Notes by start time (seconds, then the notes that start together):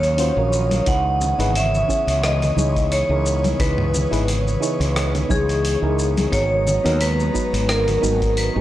Already playing: D#2 D#3 F#3 C#4 C#5 F5 D#6
0.03 open hi-hat, shaker
0.18 C#4 F4 F#4 C5, open hi-hat, shaker
0.36 A#1 C#4 F4 F#4 A#4
0.53 shaker
0.71 open hi-hat, high conga, shaker
0.86 C#2 C#3 E3 B3 D#4 E4 G#4 B4 C#5 F#5, kick, open hi-hat, shaker
1.21 low conga, shaker
1.38 G#1 D#4 E4 G#4 B4, open hi-hat, shaker
1.55 E5, open hi-hat, shaker
1.75 shaker
1.88 C#4 E4 G#4 C#5, kick, shaker
2.07 C#2, open hi-hat, shaker
2.24 D#5, cross-stick, open hi-hat, shaker
2.42 open hi-hat, low conga, shaker
2.57 C#2 D#4 E4 G#4 C#5, high conga, shaker
2.76 kick, open hi-hat, shaker
2.92 C#5, open hi-hat, shaker
3.09 C#2 D#4 E4 G#4 A#4
3.26 shaker
3.44 open hi-hat, high conga, shaker
3.58 C#2 D#4 E4 G#4 B4, kick, open hi-hat, shaker
3.78 mid tom
3.94 low conga, shaker
4.11 G#1 D#4 E4 G#4 B4, open hi-hat, shaker
4.28 open hi-hat, shaker
4.48 shaker
4.60 D#4 E4 G#4 C#5, shaker
4.80 C#2, open hi-hat, shaker
4.96 cross-stick, open hi-hat, shaker
5.15 open hi-hat, low conga, shaker
5.29 C#2 D#4 E4 G#4 C#5, kick, high conga, shaker
5.49 open hi-hat, shaker
5.65 open hi-hat, shaker
5.82 C#2 D#4 E4 G#4 A#4
5.99 shaker
6.17 open hi-hat, high conga, shaker
6.31 G#1 F#3 G#3 B3 D#4 F#4 A#4 C#5 A#5, kick, open hi-hat, shaker
6.67 low conga, shaker
6.84 D#2 B3 D#4 F#4 A#4, open hi-hat, shaker
7.01 B4, open hi-hat, shaker
7.20 shaker
7.34 B3 D#4 F#4 B4, kick, shaker
7.53 G#1, open hi-hat, shaker
7.69 A#4, cross-stick, open hi-hat, shaker
7.88 open hi-hat, low conga, shaker
8.02 G#1 B3 D#4 F#4 A#4, high conga, shaker
8.22 kick, open hi-hat, shaker
8.37 B4, open hi-hat, shaker
8.55 G#1 B3 D#4 F#4 G#4